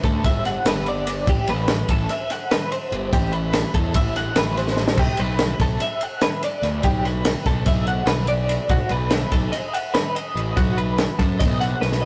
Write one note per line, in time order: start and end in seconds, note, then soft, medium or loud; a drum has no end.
0.03 0.25 D2 medium
0.03 0.25 A4 medium
0.03 kick medium
0.03 snare soft
0.03 ride medium
0.24 0.57 G1 loud
0.24 0.45 E5 medium
0.24 kick loud
0.24 snare soft
0.24 ride loud
0.45 0.66 F#5 medium
0.45 snare soft
0.45 ride medium
0.65 1.27 G1 medium
0.65 0.87 B4 medium
0.65 snare loud
0.65 ride loud
0.86 1.28 D5 medium
0.86 ride medium
1.07 snare soft
1.07 ride medium
1.27 1.36 A1 loud
1.27 1.49 G4 loud
1.27 kick loud
1.27 ride loud
1.47 1.82 A1 loud
1.47 1.90 B4 medium
1.47 ride medium
1.68 snare loud
1.68 ride medium
1.88 2.05 A1 loud
1.88 2.10 A4 medium
1.88 kick medium
1.88 ride medium
2.09 2.31 E5 medium
2.09 snare soft
2.09 ride medium
2.30 2.52 F#5 medium
2.30 snare soft
2.30 ride medium
2.51 2.72 B4 medium
2.51 snare loud
2.51 ride loud
2.72 3.13 C5 medium
2.72 ride medium
2.92 3.09 G1 medium
2.92 ride medium
3.13 3.63 A1 loud
3.13 3.32 G4 medium
3.13 kick loud
3.13 ride medium
3.32 3.74 B4 medium
3.32 ride medium
3.53 snare loud
3.53 ride loud
3.74 3.96 E2 medium
3.74 3.95 A4 medium
3.74 kick medium
3.74 ride medium
3.94 4.28 A1 medium
3.94 4.16 E5 medium
3.94 kick loud
3.94 ride loud
4.16 4.37 F#5 medium
4.16 snare soft
4.16 ride medium
4.35 4.97 A1 medium
4.35 4.57 B4 medium
4.35 snare loud
4.35 ride loud
4.57 4.99 C5 medium
4.57 snare soft
4.57 ride medium
4.68 snare medium
4.77 snare medium
4.88 snare loud
4.97 5.06 B1 loud
4.97 5.20 G4 medium
4.97 kick loud
4.97 crash loud
5.17 5.52 B1 loud
5.17 5.61 B4 medium
5.17 ride medium
5.39 snare loud
5.39 ride medium
5.60 5.77 B1 medium
5.60 5.82 A4 medium
5.60 kick medium
5.60 snare soft
5.60 ride medium
5.80 6.03 E5 medium
5.80 snare soft
5.80 ride loud
6.01 6.23 F#5 medium
6.01 ride medium
6.21 6.43 B4 medium
6.21 snare loud
6.21 ride loud
6.43 6.85 D5 medium
6.43 snare soft
6.43 ride medium
6.62 6.80 D2 medium
6.62 snare soft
6.62 ride medium
6.83 7.34 B1 loud
6.83 7.05 G4 loud
6.83 kick loud
6.83 ride medium
7.05 7.46 B4 medium
7.05 snare soft
7.05 ride medium
7.25 snare loud
7.25 ride loud
7.46 7.63 B1 medium
7.46 7.67 A4 medium
7.46 kick medium
7.46 snare soft
7.46 ride medium
7.66 8.00 B1 loud
7.66 7.87 E5 medium
7.66 kick loud
7.66 snare soft
7.66 ride loud
7.87 8.09 F#5 medium
7.87 ride medium
8.05 8.57 B1 loud
8.05 8.28 B4 medium
8.05 snare loud
8.05 ride loud
8.27 8.70 D5 medium
8.27 ride medium
8.49 snare soft
8.49 ride medium
8.69 8.78 B1 loud
8.69 8.91 F#4 loud
8.69 kick loud
8.69 ride medium
8.89 9.24 B1 medium
8.89 9.33 B4 medium
8.89 ride medium
9.10 snare loud
9.10 ride loud
9.32 9.49 B1 loud
9.32 9.53 A4 medium
9.32 kick medium
9.32 snare soft
9.32 ride medium
9.52 9.74 D#5 medium
9.52 snare soft
9.52 ride loud
9.74 9.95 F#5 medium
9.74 ride medium
9.94 10.15 B4 medium
9.94 snare loud
9.94 ride loud
10.15 10.57 D#5 medium
10.15 ride medium
10.35 10.52 A1 medium
10.35 ride medium
10.56 11.07 B1 medium
10.56 10.78 F#4 medium
10.56 kick loud
10.56 ride medium
10.78 11.19 B4 medium
10.78 ride medium
10.98 snare loud
10.98 ride medium
11.19 11.41 F#2 medium
11.19 11.40 A4 medium
11.19 kick medium
11.19 snare soft
11.19 ride medium
11.39 11.74 B1 loud
11.39 11.60 D#5 medium
11.39 kick loud
11.39 snare soft
11.39 ride loud
11.61 11.81 F#5 medium
11.61 snare soft
11.61 ride medium
11.81 12.05 B1 medium
11.81 12.02 B4 medium
11.81 snare medium
11.92 snare medium
12.01 12.05 D#5 medium